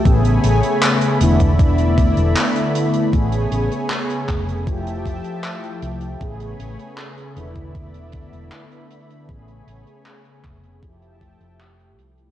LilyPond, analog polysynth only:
\new Staff \with { instrumentName = "Analog polysynth" } { \time 4/4 \key a \major \tempo 4 = 78 <cis a b gis'>4. <d a b e'>2~ <d a b e'>8 | <cis a b gis'>2 <f a e' g'>2 | <cis a b gis'>4. <d a b e'>2~ <d a b e'>8 | <cis a b gis'>2 <f a e' g'>2 | }